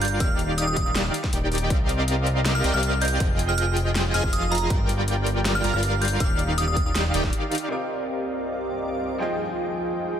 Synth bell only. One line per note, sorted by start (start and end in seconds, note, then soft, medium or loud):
0.02 0.24 G6 medium
0.20 0.56 F6 medium
0.58 0.64 D#6 medium
0.67 0.73 D#6 medium
0.76 0.83 D#6 medium
0.86 0.92 D#6 medium
2.55 2.72 F6 medium
2.74 3.00 F6 loud
3.02 3.24 G6 medium
3.49 3.54 F6 medium
3.58 3.64 F6 medium
4.14 4.20 F6 medium
4.24 4.30 F6 medium
4.33 4.39 D#6 medium
4.42 4.48 D#6 medium
4.52 4.74 A#5 medium
5.55 5.72 F6 loud
5.74 6.00 F6 medium
6.02 6.24 G6 medium
6.20 6.56 F6 loud
6.58 6.64 D#6 medium
6.68 6.73 D#6 medium
6.77 6.83 D#6 medium
6.86 6.92 D#6 medium